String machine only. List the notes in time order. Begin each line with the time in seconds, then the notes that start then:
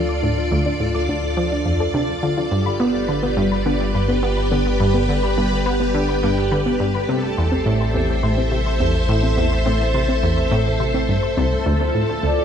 Already playing: F4 A4 D5
2.52 G4
2.72 B4
7.09 A4
7.43 C5
7.58 E5
11.66 F4
12.23 D5